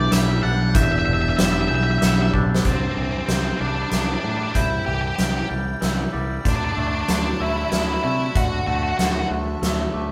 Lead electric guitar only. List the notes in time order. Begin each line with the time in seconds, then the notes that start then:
Already playing: D5
0.12 E5
0.43 F#5
0.76 E5
0.83 E5
0.92 E5
0.99 E5
1.06 E5
1.14 E5
1.22 E5
1.29 E5
1.37 E5
1.45 E5
1.53 E5
1.61 E5
1.68 E5
1.75 E5
1.83 E5
1.91 E5
1.99 E5
2.06 E5
2.14 E5
2.22 E5
2.66 C4
2.73 C4
2.81 C4
2.88 C4
2.96 C4
3.03 C4
3.11 C4
3.18 C4
3.26 C4
3.33 C4
3.42 C4
3.48 C4
3.57 C4
3.61 D4
3.68 D4
3.76 D4
3.83 D4
3.90 D4
3.98 D4
4.06 D4
4.14 D4
4.20 D4
4.29 D4
4.37 D4
4.43 D4
4.52 D4
4.56 E4
4.86 G4
4.95 G4
5.01 G4
5.07 G4
5.16 G4
5.24 G4
5.32 G4
5.39 G4
6.49 D4
6.56 D4
6.65 D4
6.72 D4
6.79 D4
6.88 D4
6.95 D4
7.01 D4
7.11 D4
7.42 E4
7.49 E4
7.57 E4
7.65 E4
7.70 E4
7.79 E4
7.86 E4
7.94 E4
8.03 E4
8.37 F#4
8.67 F#4
8.75 F#4
8.83 F#4
8.89 F#4
8.98 F#4
9.06 F#4
9.12 F#4
9.20 F#4